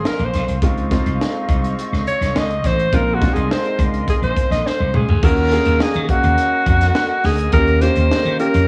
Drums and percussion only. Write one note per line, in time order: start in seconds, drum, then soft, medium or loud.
0.05 snare loud
0.19 closed hi-hat soft
0.34 snare soft
0.34 closed hi-hat medium
0.48 closed hi-hat soft
0.62 kick loud
0.62 closed hi-hat medium
0.78 closed hi-hat soft
0.91 kick medium
0.91 snare soft
0.91 closed hi-hat medium
1.06 closed hi-hat soft
1.21 snare loud
1.49 kick medium
1.49 closed hi-hat medium
1.64 closed hi-hat soft
1.79 closed hi-hat medium
1.93 snare soft
2.07 closed hi-hat medium
2.22 snare soft
2.22 closed hi-hat medium
2.36 snare loud
2.50 closed hi-hat soft
2.64 kick medium
2.64 snare soft
2.64 closed hi-hat medium
2.79 closed hi-hat soft
2.93 kick loud
2.93 closed hi-hat medium
3.22 kick loud
3.22 snare soft
3.22 closed hi-hat medium
3.36 closed hi-hat soft
3.51 snare loud
3.65 closed hi-hat soft
3.79 kick medium
3.79 closed hi-hat medium
3.94 closed hi-hat soft
4.08 kick medium
4.08 closed hi-hat medium
4.23 closed hi-hat soft
4.37 kick medium
4.37 closed hi-hat medium
4.52 snare soft
4.52 closed hi-hat medium
4.67 snare medium
4.94 mid tom medium
5.09 floor tom medium
5.23 kick loud
5.23 crash loud
5.37 closed hi-hat soft
5.51 snare soft
5.51 closed hi-hat medium
5.65 closed hi-hat soft
5.80 snare loud
5.94 closed hi-hat soft
6.09 kick medium
6.09 closed hi-hat medium
6.23 closed hi-hat soft
6.38 closed hi-hat medium
6.66 kick medium
6.66 closed hi-hat medium
6.81 snare soft
6.81 closed hi-hat medium
6.95 snare loud
7.24 snare soft
7.24 open hi-hat medium
7.38 closed hi-hat soft
7.52 kick loud
7.52 closed hi-hat medium
7.67 closed hi-hat soft
7.81 snare soft
7.81 closed hi-hat medium
7.96 closed hi-hat medium
8.11 snare loud
8.25 closed hi-hat soft
8.39 closed hi-hat medium
8.54 closed hi-hat soft